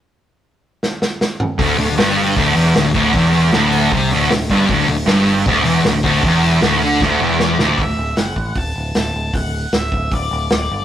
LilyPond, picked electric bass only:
\new Staff \with { instrumentName = "Picked electric bass" } { \clef bass \time 4/4 \key d \mixolydian \tempo 4 = 155 r1 | d,,8 d,,8 g,,4 d,,8 e,,8 d,,8 d,,8 | e,,4 d,,4 c,8 d,,8 d,,8 g,,8 | d,,8 d,,8 g,,4 d,,8 e,,8 d,,8 d,,8 |
e,,4 d,,8 d,8 d,,8 e,,4 d,,8 | d,,8 d,,8 fis,,8 a,,8 d,,8 d,,8 d,,8 d,,8 | d,,4 d,,8 d,,8 d,,8 d,,8 d,,8 g,,8 | }